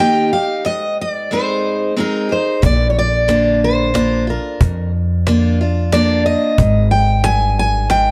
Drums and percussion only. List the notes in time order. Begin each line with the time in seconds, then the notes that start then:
2.63 cajon bass
3.29 cajon slap
3.95 cajon slap
4.61 cajon bass
5.27 cajon slap
5.92 cajon slap
6.58 cajon bass
7.24 cajon slap
7.90 cajon slap